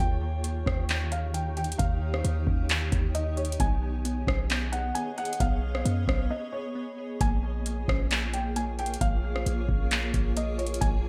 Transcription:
Already playing: C#5
0.00 D#2 D#3 D#4 G4 G5
0.22 D#3
0.44 D#3, closed hi-hat
0.66 D#2 C#4, kick, cross-stick
0.89 D#3, clap, closed hi-hat
1.12 D#3 F5, closed hi-hat
1.34 D#3 G5, closed hi-hat
1.57 G4 G5, closed hi-hat
1.64 closed hi-hat
1.72 closed hi-hat
1.78 D#2 D#3 F5, kick, closed hi-hat
2.02 D#3
2.14 cross-stick
2.24 D#2 D#3, closed hi-hat
2.47 D#2 C#4, kick
2.69 D#3, clap, closed hi-hat
2.92 D#2 D#3, kick, closed hi-hat
3.14 D#3 D#5, closed hi-hat
3.37 G4 C#5, closed hi-hat
3.45 closed hi-hat
3.52 closed hi-hat
3.60 B1 B3 G#4 C#5 D#5 G#5, kick, closed hi-hat
3.82 B3
4.05 B3, closed hi-hat
4.27 B1 C#4, kick, cross-stick
4.50 B3, clap, closed hi-hat
4.72 B3 F#5, closed hi-hat
4.95 B3 G#5, closed hi-hat
5.17 G#4 F#5, closed hi-hat
5.25 closed hi-hat
5.33 closed hi-hat
5.40 B1 B3 F5, kick, closed hi-hat
5.63 B3
5.75 cross-stick
5.85 F#2 B3, closed hi-hat
6.08 B1 C#4, kick, cross-stick
6.30 B3 D#5
6.52 B3 C#5
6.75 B3
6.98 G#4
7.21 A#1 A#3 F4 G#4 C#5 G#5, kick, closed hi-hat
7.43 A#3
7.66 A#3, closed hi-hat
7.88 A#1 C#4, kick, cross-stick
8.11 A#3, clap, closed hi-hat
8.34 A#3 G5, closed hi-hat
8.56 A#3 G#5, closed hi-hat
8.79 A#4 G5, closed hi-hat
8.86 closed hi-hat
8.94 closed hi-hat
9.01 A#1 A#3 F5, kick, closed hi-hat
9.24 A#3
9.36 cross-stick
9.46 A#1 A#3, closed hi-hat
9.69 A#1 C#4, kick
9.91 A#3, clap, closed hi-hat
10.14 A#1 A#3, kick, closed hi-hat
10.36 A#3 D#5, closed hi-hat
10.58 A#4 C#5, closed hi-hat
10.67 closed hi-hat
10.74 closed hi-hat
10.81 A#1 A#3 G#5, kick, closed hi-hat
11.05 A#3

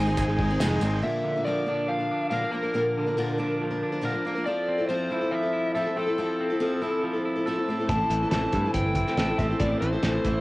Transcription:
Already playing: G#1 G#2 D#3 C4 D#4 G#4 C5 G#5
0.07 G#3 C4 D#4 G#4, tambourine
0.17 G#1 G#4, kick, open hi-hat, tambourine
0.28 G#3 C4 D#4 G#4, snare, tambourine
0.38 G#1 G#3 C4 D#4 G#4, kick
0.50 G#3 C4 D#4 G#4, tambourine
0.60 F1 G#2 D#3 G#3 C4 D#4 G#4, snare, open hi-hat, tambourine
0.80 G#1 G#3 C4 D#4 G#4, tambourine
1.02 A#2 D3 F3 A#3 D4 A#4 E5
1.24 D3
1.36 F3 A#3 D4 A#4
1.45 A#2 D3 F3 A#3 D4 A#4 D5
1.66 F3 A#3 D4 A#4
1.88 F3 F5
1.99 F3 A#3 D4 A#4
2.12 D4
2.30 A#2 D3 F3 A#3 D4 A#4 F5
2.42 F3 A#3 D4 A#4
2.51 F3 A#3 D4 A#4
2.63 F3 A#3 D4 A#4
2.74 A#2 D3 F3 A#3 D4 A#4
2.97 D3
3.06 F3 A#3 D4 A#4
3.17 A#2 D3 F3 A#3 D4 A#4
3.38 F3 A#3 D4 A#4
3.62 F3
3.70 F3 A#3 D4 A#4
3.83 D4
3.92 F3 A#3 D4 A#4
4.01 A#2 D3 F3 A#3 D4 A#4
4.13 F3 A#3 D4 A#4
4.25 F3 A#3 D4 A#4
4.35 F3 A#3 D4 A#4
4.46 F3 C4 E4 A4 D5
4.68 C4
4.78 C4 E4 A4
4.89 F3 C4 E4 A4 C5
5.10 F3 C4 E4 A4
5.21 C4 E4 A4
5.31 F3 E5
5.43 C4 E4 A4
5.53 E4
5.75 F3 C4 E4 A4 E5
5.86 C4 E4 A4
5.96 F3 C4 E4 A4
6.07 C4 E4 A4
6.18 F3 C4 E4 A4
6.41 C4
6.50 C4 E4 A4
6.60 F3 C4 E4 A4
6.81 F3 C4 E4 A4
7.03 F3
7.13 C4 E4 A4
7.25 E4
7.36 C4 E4 A4
7.47 F3 C4 E4 A4
7.57 C4 E4 A4
7.68 A2 A3 C4 E4 A4
7.80 A3 C4 E4 A4
7.87 A1 A2 E3 E4 A4 C5 A5, kick, closed hi-hat
7.91 A3 C4 E4 A4
8.10 A1 E3, closed hi-hat
8.23 A3 C4 E4 A4
8.31 A1 A2 E3 A3 C4 E4 A4 A5, snare, closed hi-hat
8.53 G2 A3 C4 E4 A4, kick, closed hi-hat
8.65 A3 C4 E4 A4
8.74 G1 E3 G5, kick, closed hi-hat
8.86 A3 C4 E4 A4
8.95 E4, kick, closed hi-hat
9.07 A3 C4 E4 A4, snare
9.17 A1 A2 E3 A3 C4 E4 A4, snare, closed hi-hat
9.29 A3 C4 E4 A4
9.38 A1 A3 C4 E4 E5, kick, closed hi-hat
9.42 A4
9.50 A3 C4 E4 A4
9.60 A1 A2 E3 A3 C4 E4 A4 D5, kick, closed hi-hat
9.81 A1 E3 C5, closed hi-hat
9.92 A3 C4 E4 A4
10.02 A1 A2 E3 A3 C4 E4 A4, snare, closed hi-hat
10.24 A1 A3 C4 E4 A4, kick, closed hi-hat

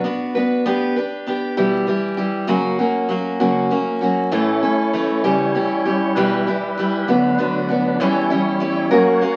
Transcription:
0.04 B3 D4 F#4 B4
0.35 B3 D4 F#4 B4
0.66 B3 D4 G4 B4
0.96 D4 G4 B4
1.27 B3 D4 G4 B4
1.57 E2 B2 E3 G3 E4 G4
1.87 E3 G3 E4 G4
2.17 E3 G3 E4 G4
2.47 F#2 C#3 F#3 A#3 C#4 F#4
2.79 F#3 A#3 C#4 F#4
3.09 F#3 A#3 C#4 F#4
3.40 F#2 C#3 F#3 A#3 C#4 F#4
3.70 F#3 A#3 C#4 F#4
4.01 F#3 A#3 C#4 F#4
4.31 A2 E3 A3 C#4 E4 A4 C#5
4.62 A3 C#4 A4
4.93 E3 A3 C#4 A4
5.24 C#3 E3 G3 C#4 G4
5.55 E3 G3 C#4 G4
5.85 G3 C#4 G4
6.15 E2 B2 E3 G3 E4 G4 B4
6.47 E3 G3 E4 G4
6.78 E3 G3 E4 G4
7.07 D2 D3 F#3 B3 D4 F#4
7.38 D3 B3 D4 F#4
7.69 B3 D4 F#4
8.00 E2 E3 G3 C#4 E4 G4 C#5
8.30 G3 C#4 E4 G4
8.60 G3 C#4 E4 G4
8.90 F#3 A#3 C#4 F#4 A#4
9.21 A#3 C#4 F#4 A#4

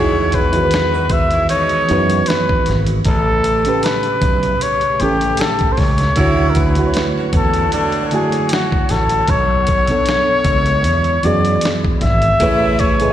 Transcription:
Already playing: E2 B2 E3 G#3 B3 D#4 E4 F#4 G#4 C#5
0.32 B4, kick, closed hi-hat
0.53 D#3 E3 B3 F#4, closed hi-hat
0.57 A#4
0.63 B4
0.71 snare, closed hi-hat
0.93 F#3 D#4 F#4
1.10 E5, kick, closed hi-hat
1.31 B2 G#3 E4, closed hi-hat
1.49 B2 G#3 D#4 C#5, closed hi-hat
1.69 closed hi-hat
1.88 F#2 E3 B3 D#4 F#4, closed hi-hat
1.92 B4
2.10 closed hi-hat
2.26 B4, closed hi-hat
2.30 snare
2.49 kick
2.66 G#1, snare, closed hi-hat
2.87 closed hi-hat
3.05 A1 C#3 A3 G4 A4, kick, closed hi-hat
3.44 closed hi-hat
3.65 A2 A3 C#4 G4, closed hi-hat
3.69 B4
3.83 B4, snare, closed hi-hat
4.03 closed hi-hat
4.22 B1, kick, closed hi-hat
4.43 closed hi-hat
4.61 C#5, closed hi-hat
4.81 closed hi-hat
5.00 A1 A2 A3 C#4 G4, closed hi-hat
5.04 A4
5.21 closed hi-hat
5.37 A4, closed hi-hat
5.41 snare
5.59 kick, closed hi-hat
5.72 C5
5.77 C#2 C#5, kick, snare, open hi-hat
5.98 snare, closed hi-hat
6.16 D2 C#3 D3 F#3 A3 E4 F#4 C#5, kick, closed hi-hat
6.20 F#4 C#5
6.50 A#4
6.55 B4, kick, closed hi-hat
6.75 D3 A3 E4 F#4, closed hi-hat
6.80 B4
6.87 C#5
6.94 snare, closed hi-hat
7.16 D3 C#4 F#4
7.33 E2 A4, kick, closed hi-hat
7.54 E3 C#4 E4, closed hi-hat
7.72 A2 F#3 D4 A4, closed hi-hat
7.92 closed hi-hat
8.07 A4
8.11 D3 A3 E4 F#4 G#4, closed hi-hat
8.16 G#5
8.32 closed hi-hat
8.49 F#4, closed hi-hat
8.53 snare
8.72 kick
8.89 A1 A4, snare, closed hi-hat
9.09 closed hi-hat
9.28 B1 B3 A4 C#5, kick, closed hi-hat
9.67 kick, closed hi-hat
9.87 B2 B3 D4 A4, closed hi-hat
9.92 C#5
10.06 snare, closed hi-hat
10.45 C#2, kick, closed hi-hat
10.66 closed hi-hat
10.84 E2 G#3 E4, closed hi-hat
11.04 closed hi-hat
11.23 F#2 E3 B3 F#4 G#4 D5, closed hi-hat
11.27 D5
11.45 closed hi-hat
11.61 closed hi-hat
11.65 snare
11.85 kick
12.01 G#1 E5, kick, snare, closed hi-hat
12.22 closed hi-hat
12.40 A1 A2 C#3 A3 E4 G#4 B4 C#5 G#5, kick, closed hi-hat
12.79 C#5, kick, closed hi-hat
13.00 A2 A3 G#4 B4, closed hi-hat
13.04 D#5

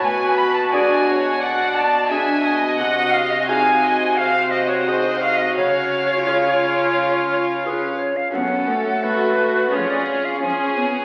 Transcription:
Already playing: F#4
0.03 B2 B4 G#5
0.38 B5
0.54 A5
0.71 D4 F#4 G#4 D5 G#5
1.08 C#5
1.40 D5 F#5
1.74 A5
2.09 D4 F#4 G#4 E5 G#5
2.44 D#5
2.77 C3 F#4 F#5
3.11 F5
3.30 D#5
3.47 D#4 F#4 G#4 F5 G#5
3.82 D#5
4.17 C5 F5
4.51 D#5
4.68 C#5
4.85 D#4 F#4 G#4 C5 D#5
5.19 F5
5.38 D#5
5.55 C#3 C#5 F5
6.26 C#4 F4 G#4
7.64 C#4 F4 G#4 B4
7.99 C#5
8.17 F5
8.30 F#2 C#4 F#4 A4 F#5
8.34 F#2 B3 A4
8.68 A3
9.03 C#2 F#4 B4
9.38 F#4
9.69 B3 C#4 G#4
9.73 F2 F4 C#5
9.90 D5
10.07 C#5
10.25 F5
10.40 F3 C#4 G#4 G#5
10.77 B3

